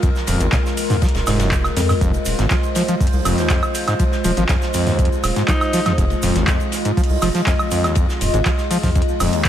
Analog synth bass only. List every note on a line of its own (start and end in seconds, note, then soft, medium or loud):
0.28 0.36 D#1 medium
0.40 0.49 G#1 medium
1.15 1.23 D#1 medium
1.27 1.70 F1 loud
1.77 1.94 F2 loud
2.01 2.18 F1 loud
2.26 2.35 D#1 medium
2.39 2.47 G#1 medium
3.13 3.21 C2 medium
3.25 3.34 F1 loud
4.24 4.33 D#1 loud
4.37 4.45 G#1 medium
5.24 5.32 D#1 medium
5.98 6.15 F1 loud
6.23 6.31 D#1 loud
6.36 6.44 G#1 medium
7.10 7.18 C2 medium
7.22 7.31 F1 loud
8.21 8.30 D#1 loud
8.34 8.42 G#1 medium
9.20 9.29 D#1 medium